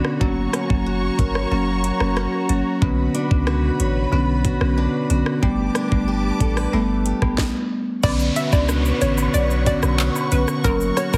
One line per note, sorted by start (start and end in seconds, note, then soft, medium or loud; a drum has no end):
0.00 0.21 B2 medium
0.00 0.18 D3 medium
0.00 0.18 B3 medium
0.00 0.28 B3 medium
0.00 0.19 C#4 medium
0.00 0.28 D4 medium
0.00 0.86 F#4 medium
0.00 5.39 F#4 medium
0.00 0.18 C#5 medium
0.00 1.18 C#5 medium
0.00 0.18 B5 medium
0.05 cross-stick medium
0.21 0.47 F#1 medium
0.21 0.38 F#3 loud
0.21 3.71 F#3 medium
0.21 0.38 A#3 medium
0.21 0.38 C#4 loud
0.21 2.79 C#5 medium
0.21 2.79 A#5 medium
0.21 2.79 C#6 medium
0.21 kick loud
0.53 2.16 C#4 medium
0.53 cross-stick loud
0.53 closed hi-hat medium
0.69 1.09 F#1 medium
0.69 0.87 F#3 medium
0.69 0.87 A#3 medium
0.69 0.87 C#4 medium
0.69 kick medium
0.86 1.84 F#4 medium
1.19 1.45 G1 medium
1.19 2.88 A#4 medium
1.19 kick medium
1.19 closed hi-hat medium
1.35 cross-stick medium
1.51 1.91 F#1 loud
1.51 1.68 F#3 medium
1.51 1.69 A#3 medium
1.51 2.88 A#3 medium
1.51 1.69 C#4 loud
1.84 2.49 F#4 medium
1.84 closed hi-hat medium
2.00 2.27 F#1 medium
2.00 2.45 F#3 medium
2.00 2.45 A#3 medium
2.00 2.45 C#4 medium
2.00 cross-stick loud
2.16 3.14 C#4 medium
2.16 cross-stick medium
2.49 2.62 G1 medium
2.49 2.79 F#3 medium
2.49 2.79 A#3 medium
2.49 2.79 C#4 medium
2.49 3.47 F#4 medium
2.49 closed hi-hat medium
2.82 3.08 B1 loud
2.82 5.43 B2 medium
2.82 2.99 D3 medium
2.82 2.99 B3 medium
2.82 2.99 C#4 loud
2.82 5.40 B4 medium
2.82 5.40 B5 medium
2.82 kick loud
3.14 4.77 D4 medium
3.14 closed hi-hat medium
3.30 3.70 C#2 medium
3.30 3.48 D3 medium
3.30 3.48 B3 medium
3.30 3.48 C#4 medium
3.30 kick medium
3.47 4.44 F#4 medium
3.47 cross-stick loud
3.80 4.06 A1 medium
3.80 5.49 C#5 medium
3.80 closed hi-hat medium
4.12 4.51 B1 loud
4.12 4.29 D3 medium
4.12 4.29 B3 medium
4.12 6.44 B3 medium
4.12 4.30 C#4 medium
4.45 5.09 F#4 medium
4.45 kick medium
4.45 closed hi-hat medium
4.61 4.87 B1 medium
4.61 5.06 D3 medium
4.61 5.06 B3 medium
4.61 5.06 C#4 medium
4.61 cross-stick medium
4.78 5.75 D4 medium
5.10 5.23 B1 medium
5.10 5.40 D3 medium
5.10 5.40 B3 medium
5.10 5.40 C#4 medium
5.10 5.49 F#4 medium
5.10 closed hi-hat medium
5.26 cross-stick medium
5.42 5.69 G1 loud
5.42 5.60 G3 medium
5.42 7.45 G3 medium
5.42 5.60 A3 medium
5.42 5.60 B3 loud
5.42 7.36 G4 medium
5.42 7.36 B4 medium
5.42 7.36 A5 medium
5.42 7.36 D6 medium
5.42 kick loud
5.75 7.95 D4 medium
5.75 cross-stick loud
5.75 closed hi-hat medium
5.92 6.31 G1 medium
5.92 6.09 G3 medium
5.92 6.09 A3 medium
5.92 6.09 B3 medium
5.92 kick medium
6.08 7.05 G4 medium
6.40 6.67 A1 loud
6.40 6.57 A4 medium
6.40 kick medium
6.40 closed hi-hat medium
6.57 7.45 B4 medium
6.57 cross-stick medium
6.73 7.12 G1 loud
6.73 6.90 G3 medium
6.73 7.45 A3 medium
6.73 6.90 A3 medium
6.73 6.90 B3 loud
7.06 7.45 G4 medium
7.06 closed hi-hat medium
7.22 7.35 G1 medium
7.22 7.39 G3 medium
7.22 7.39 A3 medium
7.22 7.39 B3 medium
7.22 kick medium
7.22 cross-stick medium
7.38 kick loud
7.38 snare medium
8.03 8.30 B1 loud
8.03 10.64 B2 medium
8.03 8.21 D3 medium
8.03 8.21 B3 medium
8.03 8.21 C#4 loud
8.03 10.62 B4 medium
8.03 10.62 C#5 medium
8.03 8.15 D5 loud
8.03 11.18 F#5 medium
8.03 11.18 C#6 medium
8.03 kick loud
8.03 crash loud
8.03 downlifter medium
8.03 high woodblock medium
8.03 shaker medium
8.20 shaker soft
8.36 9.01 F#4 medium
8.36 8.47 E5 medium
8.36 closed hi-hat medium
8.36 cabasa medium
8.36 shaker medium
8.52 8.92 C#2 medium
8.52 8.98 B3 medium
8.52 8.98 C#4 medium
8.52 8.97 D4 medium
8.52 8.64 D5 medium
8.52 kick medium
8.52 high woodblock medium
8.52 shaker medium
8.69 10.71 D4 medium
8.69 cross-stick loud
8.69 shaker medium
8.85 shaker medium
9.01 9.28 A1 loud
9.01 9.31 D3 medium
9.01 9.31 B3 medium
9.01 9.32 C#4 medium
9.01 9.66 F#4 medium
9.01 9.13 C#5 medium
9.01 closed hi-hat medium
9.01 cabasa medium
9.01 shaker medium
9.17 high woodblock medium
9.17 shaker medium
9.34 9.73 B1 loud
9.34 9.99 C#5 medium
9.34 9.45 D5 medium
9.34 shaker medium
9.51 shaker medium
9.66 9.84 D3 medium
9.66 9.84 B3 medium
9.66 9.84 C#4 medium
9.66 10.32 F#4 medium
9.66 9.78 D5 medium
9.66 kick medium
9.66 closed hi-hat medium
9.66 cabasa medium
9.66 shaker soft
9.83 10.09 B1 medium
9.83 cross-stick loud
9.83 high woodblock medium
9.83 shaker medium
9.99 11.18 C#5 medium
9.99 clap loud
9.99 shaker medium
10.16 high woodblock medium
10.16 shaker medium
10.32 10.45 B1 medium
10.32 10.62 D3 medium
10.32 10.62 B3 medium
10.32 10.62 C#4 medium
10.32 10.97 F#4 medium
10.32 10.43 B4 medium
10.32 closed hi-hat medium
10.32 cabasa medium
10.32 shaker medium
10.48 cross-stick medium
10.48 shaker medium
10.64 10.91 F#1 loud
10.64 10.81 F#3 loud
10.64 11.18 F#3 medium
10.64 10.82 A#3 medium
10.64 10.82 C#4 loud
10.64 10.75 A#4 loud
10.64 11.18 A#4 medium
10.64 11.18 C#5 medium
10.64 kick loud
10.64 high woodblock medium
10.64 shaker medium
10.81 shaker medium
10.97 11.18 F#4 medium
10.97 11.08 C#5 medium
10.97 cross-stick loud
10.97 closed hi-hat medium
10.97 cabasa medium
10.97 shaker medium
11.13 11.18 F#1 loud
11.13 11.18 F#3 medium
11.13 11.18 A#3 medium
11.13 11.18 C#4 medium
11.13 11.18 A#4 medium
11.13 kick medium
11.13 high woodblock medium
11.13 shaker medium